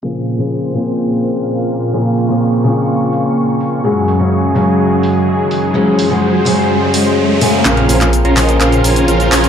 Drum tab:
HH |--o---o---o---o-|--o---o---o---o-|--o---o---o---o-|--o---o---o---o-|
SH |----------------|----------------|----------------|----------------|
CP |----------------|----------------|----------------|----------------|

HH |xxoxxxoxxxoxxxox|
SH |x-xxx-xxxxxxxxxx|
CP |x--x--x-x-----x-|